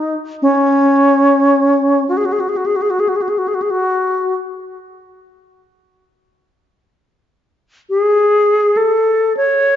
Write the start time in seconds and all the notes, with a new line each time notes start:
Already playing: D#4
0.42 C#4
2.09 F#4
2.17 G#4
2.25 F#4
2.32 G#4
2.40 F#4
2.49 G#4
2.57 F#4
2.66 G#4
2.76 F#4
2.82 G#4
2.90 F#4
3.00 G#4
3.09 F#4
3.16 G#4
3.22 F#4
3.29 G#4
3.38 F#4
3.48 G#4
3.54 F#4
3.62 G#4
3.70 F#4
7.90 G#4
8.77 A4
9.37 C#5